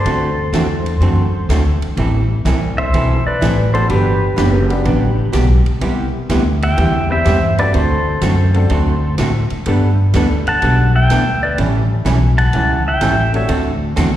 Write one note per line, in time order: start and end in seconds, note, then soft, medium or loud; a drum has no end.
0.00 1.79 A4 medium
0.00 1.79 C5 medium
0.05 0.52 D2 medium
0.05 0.29 D3 medium
0.05 0.29 A3 medium
0.05 0.29 C4 medium
0.05 0.29 F#4 medium
0.05 0.30 A4 medium
0.05 ride medium
0.53 1.00 E2 medium
0.53 0.66 D3 medium
0.53 0.66 A3 medium
0.53 0.66 C4 medium
0.53 0.67 F#4 medium
0.53 0.67 A4 medium
0.53 snare medium
0.53 hi-hat pedal medium
0.53 ride medium
0.86 ride soft
1.00 1.48 F#2 medium
1.00 1.25 D3 soft
1.00 1.25 A3 medium
1.00 1.25 C4 medium
1.00 1.25 F#4 medium
1.00 1.25 A4 medium
1.00 ride medium
1.49 1.80 D2 medium
1.49 1.62 D3 medium
1.49 1.62 A3 medium
1.49 1.62 C4 medium
1.49 1.63 F#4 medium
1.49 1.63 A4 medium
1.49 snare medium
1.49 hi-hat pedal medium
1.49 ride medium
1.82 muted upright bass stroke soft
1.82 ride soft
1.97 2.44 A1 medium
1.97 2.21 E3 medium
1.97 2.21 G3 medium
1.97 2.21 C4 medium
1.97 2.21 E4 medium
1.97 2.22 A4 medium
1.97 ride medium
2.45 2.92 C2 medium
2.45 2.58 E3 medium
2.45 2.58 G3 medium
2.45 2.58 C4 medium
2.45 2.59 E4 medium
2.45 2.59 A4 medium
2.45 snare medium
2.45 hi-hat pedal soft
2.45 ride medium
2.78 3.24 C5 medium
2.78 3.28 E5 loud
2.93 3.24 B1 medium
2.93 3.17 E3 medium
2.93 3.17 G3 medium
2.93 3.17 C4 medium
2.93 3.18 E4 medium
2.93 3.18 A4 medium
2.93 ride medium
3.26 3.72 B4 medium
3.26 3.73 D5 loud
3.26 muted upright bass stroke soft
3.41 3.89 A1 medium
3.41 3.54 E3 medium
3.41 3.54 G3 medium
3.41 3.54 C4 medium
3.41 3.54 E4 medium
3.41 3.54 A4 medium
3.41 snare medium
3.41 hi-hat pedal medium
3.41 ride medium
3.73 3.88 G3 medium
3.73 3.88 B3 medium
3.73 3.88 D4 medium
3.73 3.88 F#4 medium
3.73 3.89 G4 medium
3.73 3.89 A4 medium
3.73 3.88 C5 medium
3.73 ride soft
3.89 4.36 G1 medium
3.89 4.13 D3 medium
3.89 4.13 F#3 medium
3.89 4.13 B3 medium
3.89 4.13 D4 medium
3.89 5.30 G4 medium
3.89 4.14 G4 medium
3.89 5.30 B4 medium
3.89 ride medium
4.36 4.84 F#1 medium
4.36 4.49 D3 medium
4.36 4.50 F#3 medium
4.36 4.50 B3 medium
4.36 4.50 D4 medium
4.36 4.50 G4 medium
4.36 snare medium
4.36 hi-hat pedal medium
4.36 ride medium
4.69 4.84 G3 medium
4.69 4.84 B3 medium
4.69 4.84 D4 medium
4.69 4.84 F#4 medium
4.69 4.85 G4 medium
4.69 ride soft
4.85 5.32 A1 medium
4.85 5.09 D3 medium
4.85 5.09 F#3 medium
4.85 5.09 B3 medium
4.85 5.09 D4 medium
4.85 5.09 G4 medium
4.85 ride medium
5.32 5.64 B1 medium
5.32 5.45 D3 medium
5.32 5.45 F#3 medium
5.32 5.46 B3 medium
5.32 5.46 D4 medium
5.32 5.46 G4 medium
5.32 snare medium
5.32 hi-hat pedal medium
5.32 ride medium
5.66 muted upright bass stroke soft
5.66 ride soft
5.81 6.28 C2 medium
5.81 6.05 C3 medium
5.81 6.05 G3 medium
5.81 6.05 B3 medium
5.81 6.05 E4 medium
5.81 6.05 G4 medium
5.81 ride medium
6.29 6.76 D2 loud
6.29 6.42 C3 medium
6.29 6.42 G3 medium
6.29 6.42 B3 medium
6.29 6.43 E4 medium
6.29 6.43 G4 medium
6.29 snare medium
6.29 hi-hat pedal medium
6.29 ride medium
6.62 7.08 E5 medium
6.62 7.12 G5 loud
6.62 ride medium
6.77 7.25 E2 medium
6.77 7.00 C3 medium
6.77 7.01 G3 medium
6.77 7.01 B3 medium
6.77 7.01 E4 medium
6.77 7.01 G4 medium
6.77 ride medium
7.10 7.24 G3 medium
7.10 7.24 B3 medium
7.10 7.24 C4 medium
7.10 7.24 E4 medium
7.10 7.25 G4 medium
7.10 7.55 C5 medium
7.10 7.61 E5 loud
7.24 7.73 G2 medium
7.24 7.37 C3 medium
7.24 7.38 G3 medium
7.24 7.38 B3 medium
7.24 7.38 E4 medium
7.24 7.38 G4 medium
7.24 snare medium
7.24 hi-hat pedal soft
7.24 ride medium
7.58 7.72 A3 medium
7.58 7.72 C4 medium
7.58 7.73 D4 medium
7.58 7.73 F#4 medium
7.58 7.73 A4 medium
7.58 7.73 B4 medium
7.58 7.73 D5 medium
7.58 ride soft
7.73 8.21 D2 medium
7.73 7.97 D3 medium
7.73 7.97 A3 medium
7.73 7.97 C4 medium
7.73 7.97 F#4 medium
7.73 7.98 A4 medium
7.73 9.14 A4 medium
7.73 9.15 C5 medium
7.73 ride medium
8.21 8.68 F#2 loud
8.21 8.34 D3 medium
8.21 8.34 A3 medium
8.21 8.35 C4 medium
8.21 8.35 F#4 medium
8.21 8.35 A4 medium
8.21 snare medium
8.21 hi-hat pedal medium
8.21 ride medium
8.54 8.68 A3 medium
8.54 8.68 C4 medium
8.54 8.69 D4 medium
8.54 8.69 F#4 medium
8.54 8.69 A4 medium
8.54 ride soft
8.70 9.17 D2 medium
8.70 8.93 D3 medium
8.70 8.93 A3 medium
8.70 8.93 C4 medium
8.70 8.94 F#4 medium
8.70 8.94 A4 medium
8.70 ride medium
9.18 9.49 A2 medium
9.18 9.30 D3 medium
9.18 9.31 A3 medium
9.18 9.31 C4 medium
9.18 9.31 F#4 medium
9.18 9.31 A4 medium
9.18 snare medium
9.18 hi-hat pedal medium
9.18 ride medium
9.50 muted upright bass stroke soft
9.50 ride soft
9.66 10.13 G2 medium
9.66 9.90 G3 medium
9.66 9.95 A3 medium
9.66 9.96 B3 medium
9.66 9.90 B3 medium
9.66 9.96 D4 medium
9.66 9.90 D4 medium
9.66 9.96 G4 medium
9.66 9.96 A4 medium
9.66 9.90 A4 medium
9.66 ride medium
10.14 10.44 D2 medium
10.14 10.26 G3 medium
10.14 10.88 A3 medium
10.14 10.88 B3 medium
10.14 10.27 B3 medium
10.14 10.89 D4 medium
10.14 10.27 D4 medium
10.14 10.89 G4 medium
10.14 10.27 A4 medium
10.14 10.89 A4 medium
10.14 snare medium
10.14 hi-hat pedal medium
10.14 ride medium
10.47 10.92 F#5 medium
10.47 10.97 A5 loud
10.47 muted upright bass stroke soft
10.47 ride soft
10.62 11.08 B1 medium
10.62 10.85 G3 medium
10.62 10.86 B3 medium
10.62 10.86 D4 medium
10.62 10.86 A4 medium
10.62 ride medium
10.96 11.40 E5 medium
10.96 11.44 G5 loud
11.10 11.56 D2 medium
11.10 11.22 G3 medium
11.10 11.22 B3 medium
11.10 11.23 D4 medium
11.10 11.23 A4 medium
11.10 snare medium
11.10 hi-hat pedal medium
11.10 ride medium
11.43 11.58 B4 medium
11.43 11.57 D5 medium
11.58 12.04 A1 medium
11.58 11.81 E3 medium
11.58 11.81 G3 medium
11.58 11.81 C#4 medium
11.58 11.82 E4 medium
11.58 11.82 A4 medium
11.58 ride medium
12.05 12.52 B1 medium
12.05 12.17 E3 medium
12.05 12.18 G3 medium
12.05 12.18 C#4 medium
12.05 12.18 E4 medium
12.05 12.18 A4 medium
12.05 snare medium
12.05 hi-hat pedal medium
12.05 ride medium
12.38 12.83 F#5 medium
12.38 12.83 A5 loud
12.38 ride soft
12.53 13.00 C#2 medium
12.53 12.77 E3 medium
12.53 12.77 G3 medium
12.53 12.77 C#4 medium
12.53 12.77 E4 medium
12.53 12.77 A4 medium
12.53 ride medium
12.88 13.32 E5 medium
12.88 13.37 G5 loud
13.01 13.48 A1 medium
13.01 13.14 E3 medium
13.01 13.14 G3 medium
13.01 13.14 C#4 medium
13.01 13.14 E4 medium
13.01 13.14 A4 medium
13.01 snare medium
13.01 hi-hat pedal medium
13.01 ride medium
13.33 13.47 A3 medium
13.33 13.47 C4 medium
13.33 13.48 D4 medium
13.33 13.48 F#4 medium
13.33 13.48 A4 medium
13.33 13.49 C#5 medium
13.33 13.49 E5 medium
13.33 ride soft
13.48 13.96 D2 medium
13.48 13.72 D3 medium
13.48 13.72 A3 medium
13.48 13.72 C4 medium
13.48 13.73 F#4 medium
13.48 13.73 A4 medium
13.48 ride medium
13.96 14.17 E2 loud
13.96 14.09 D3 medium
13.96 14.09 A3 medium
13.96 14.09 C4 medium
13.96 14.10 F#4 medium
13.96 14.10 A4 medium
13.96 snare medium
13.96 hi-hat pedal medium
13.96 ride medium